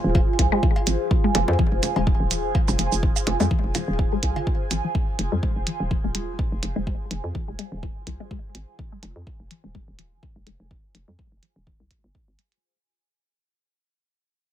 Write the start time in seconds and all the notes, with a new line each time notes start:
Already playing: F4 G#4 C5 G#5
0.04 D#1
0.15 F3, kick, cowbell
0.39 C2 F3, kick, closed hi-hat
0.52 G#3
0.63 F3, kick
0.76 cowbell
0.87 G#1 F3, closed hi-hat, shaker
1.11 F3, kick
1.24 G#3
1.35 F1 F3, closed hi-hat, cowbell, low bongo, low conga
1.48 F2, low bongo
1.59 F3, kick
1.72 F1
1.83 F3, closed hi-hat, low conga, shaker
1.96 D#1 G#3, cowbell
2.07 F3, kick
2.20 D#1
2.31 F3, closed hi-hat, shaker
2.44 F1
2.55 F3, kick, cowbell
2.68 F1 G#3, low conga, shaker
2.79 F1 F3, closed hi-hat, shaker
2.92 F1, shaker
3.03 F3, kick
3.16 cowbell, shaker
3.27 F1 F3, closed hi-hat, low bongo, low conga
3.40 F2 G#3, low bongo, shaker
3.51 F3, kick
3.64 F1
3.75 F3, closed hi-hat, cowbell, low conga, shaker
3.88 D#1
3.99 F3, kick
4.12 G#3
4.23 C2, kick, closed hi-hat
4.36 D#3, cowbell
4.47 kick
4.71 G#1 F3, closed hi-hat, shaker
4.84 F3
4.95 F3, kick
5.19 F1 F3, closed hi-hat
5.32 F2 G#3
5.43 G#3, kick
5.56 F1
5.67 F3, closed hi-hat
5.80 D#1
5.91 F3, kick
6.04 D#1 G#3
6.15 G#3, closed hi-hat
6.28 F1
6.39 F3, kick
6.52 F1
6.63 F1 F3, closed hi-hat
6.76 F1 G#3
6.87 G#3, kick
7.11 F1 F3, closed hi-hat
7.24 F2
7.35 F3, kick
7.48 F1 G#3
7.59 G#3, closed hi-hat
7.72 D#1
7.83 F3, kick
8.07 C2 F3, kick, closed hi-hat
8.20 G#3
8.31 G#3, kick
8.55 G#1 F3, closed hi-hat
8.79 F3, kick
8.92 G#3
9.03 F1 G#3, closed hi-hat
9.16 F2
9.27 F3, kick
9.40 F1
9.51 F3, closed hi-hat
9.64 D#1 G#3
9.75 G#3, kick
9.88 D#1
9.99 F3, closed hi-hat
10.12 F1
10.23 F3, kick
10.36 F1 G#3
10.47 F1 G#3, closed hi-hat
10.60 F1
10.71 F3, kick
10.95 F1 F3, closed hi-hat
11.08 F2 G#3
11.19 G#3, kick
11.32 F1
11.43 F3, closed hi-hat
11.56 D#1
11.67 F3, kick
11.80 C2 G#3
11.91 kick, closed hi-hat
12.04 G1
12.15 G#3, kick
12.28 G#1
12.39 G3, closed hi-hat
12.52 closed hi-hat